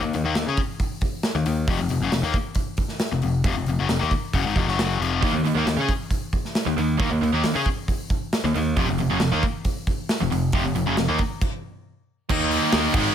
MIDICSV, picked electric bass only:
0, 0, Header, 1, 2, 480
1, 0, Start_track
1, 0, Key_signature, -4, "minor"
1, 0, Tempo, 442804
1, 1831, Time_signature, 4, 2, 24, 8
1, 10475, Tempo, 437956
1, 14293, End_track
2, 0, Start_track
2, 0, Title_t, "Picked electric bass"
2, 0, Program_c, 0, 34
2, 31, Note_on_c, 0, 39, 66
2, 144, Note_off_c, 0, 39, 0
2, 161, Note_on_c, 0, 39, 68
2, 253, Note_off_c, 0, 39, 0
2, 259, Note_on_c, 0, 39, 81
2, 377, Note_off_c, 0, 39, 0
2, 395, Note_on_c, 0, 39, 83
2, 498, Note_off_c, 0, 39, 0
2, 505, Note_on_c, 0, 49, 94
2, 620, Note_off_c, 0, 49, 0
2, 1461, Note_on_c, 0, 39, 75
2, 1577, Note_off_c, 0, 39, 0
2, 1587, Note_on_c, 0, 39, 71
2, 1812, Note_off_c, 0, 39, 0
2, 1818, Note_on_c, 0, 29, 78
2, 1931, Note_off_c, 0, 29, 0
2, 1938, Note_on_c, 0, 29, 72
2, 2045, Note_off_c, 0, 29, 0
2, 2051, Note_on_c, 0, 29, 61
2, 2166, Note_off_c, 0, 29, 0
2, 2172, Note_on_c, 0, 30, 84
2, 2288, Note_off_c, 0, 30, 0
2, 2295, Note_on_c, 0, 29, 75
2, 2400, Note_off_c, 0, 29, 0
2, 2406, Note_on_c, 0, 39, 93
2, 2529, Note_off_c, 0, 39, 0
2, 3384, Note_on_c, 0, 29, 67
2, 3498, Note_off_c, 0, 29, 0
2, 3507, Note_on_c, 0, 29, 74
2, 3720, Note_off_c, 0, 29, 0
2, 3727, Note_on_c, 0, 29, 79
2, 3849, Note_off_c, 0, 29, 0
2, 3856, Note_on_c, 0, 29, 70
2, 3969, Note_off_c, 0, 29, 0
2, 3976, Note_on_c, 0, 29, 64
2, 4094, Note_off_c, 0, 29, 0
2, 4115, Note_on_c, 0, 30, 75
2, 4216, Note_off_c, 0, 30, 0
2, 4223, Note_on_c, 0, 29, 76
2, 4338, Note_off_c, 0, 29, 0
2, 4359, Note_on_c, 0, 39, 92
2, 4467, Note_off_c, 0, 39, 0
2, 4699, Note_on_c, 0, 30, 87
2, 4816, Note_off_c, 0, 30, 0
2, 4833, Note_on_c, 0, 32, 88
2, 4933, Note_off_c, 0, 32, 0
2, 4939, Note_on_c, 0, 29, 89
2, 5052, Note_off_c, 0, 29, 0
2, 5059, Note_on_c, 0, 30, 93
2, 5400, Note_off_c, 0, 30, 0
2, 5414, Note_on_c, 0, 29, 87
2, 5646, Note_off_c, 0, 29, 0
2, 5658, Note_on_c, 0, 39, 87
2, 5759, Note_off_c, 0, 39, 0
2, 5766, Note_on_c, 0, 39, 74
2, 5878, Note_off_c, 0, 39, 0
2, 5885, Note_on_c, 0, 39, 65
2, 6010, Note_off_c, 0, 39, 0
2, 6016, Note_on_c, 0, 39, 84
2, 6127, Note_off_c, 0, 39, 0
2, 6134, Note_on_c, 0, 39, 76
2, 6244, Note_off_c, 0, 39, 0
2, 6250, Note_on_c, 0, 49, 93
2, 6373, Note_off_c, 0, 49, 0
2, 7223, Note_on_c, 0, 39, 73
2, 7325, Note_off_c, 0, 39, 0
2, 7332, Note_on_c, 0, 39, 79
2, 7567, Note_off_c, 0, 39, 0
2, 7578, Note_on_c, 0, 39, 74
2, 7699, Note_off_c, 0, 39, 0
2, 7705, Note_on_c, 0, 39, 71
2, 7809, Note_off_c, 0, 39, 0
2, 7815, Note_on_c, 0, 39, 63
2, 7935, Note_off_c, 0, 39, 0
2, 7941, Note_on_c, 0, 39, 85
2, 8061, Note_off_c, 0, 39, 0
2, 8074, Note_on_c, 0, 39, 75
2, 8182, Note_off_c, 0, 39, 0
2, 8188, Note_on_c, 0, 49, 95
2, 8305, Note_off_c, 0, 49, 0
2, 9147, Note_on_c, 0, 39, 69
2, 9264, Note_off_c, 0, 39, 0
2, 9271, Note_on_c, 0, 39, 88
2, 9498, Note_off_c, 0, 39, 0
2, 9503, Note_on_c, 0, 29, 86
2, 9622, Note_off_c, 0, 29, 0
2, 9629, Note_on_c, 0, 29, 73
2, 9745, Note_off_c, 0, 29, 0
2, 9757, Note_on_c, 0, 29, 62
2, 9870, Note_off_c, 0, 29, 0
2, 9877, Note_on_c, 0, 30, 79
2, 9989, Note_off_c, 0, 30, 0
2, 10003, Note_on_c, 0, 29, 76
2, 10102, Note_off_c, 0, 29, 0
2, 10108, Note_on_c, 0, 39, 88
2, 10225, Note_off_c, 0, 39, 0
2, 11084, Note_on_c, 0, 29, 69
2, 11181, Note_off_c, 0, 29, 0
2, 11188, Note_on_c, 0, 29, 76
2, 11415, Note_off_c, 0, 29, 0
2, 11422, Note_on_c, 0, 29, 87
2, 11539, Note_off_c, 0, 29, 0
2, 11545, Note_on_c, 0, 29, 75
2, 11667, Note_off_c, 0, 29, 0
2, 11679, Note_on_c, 0, 29, 62
2, 11789, Note_off_c, 0, 29, 0
2, 11795, Note_on_c, 0, 30, 76
2, 11912, Note_off_c, 0, 30, 0
2, 11919, Note_on_c, 0, 29, 71
2, 12034, Note_off_c, 0, 29, 0
2, 12044, Note_on_c, 0, 39, 91
2, 12157, Note_off_c, 0, 39, 0
2, 13363, Note_on_c, 0, 39, 85
2, 13665, Note_off_c, 0, 39, 0
2, 13840, Note_on_c, 0, 39, 93
2, 13991, Note_off_c, 0, 39, 0
2, 14067, Note_on_c, 0, 32, 86
2, 14221, Note_off_c, 0, 32, 0
2, 14293, End_track
0, 0, End_of_file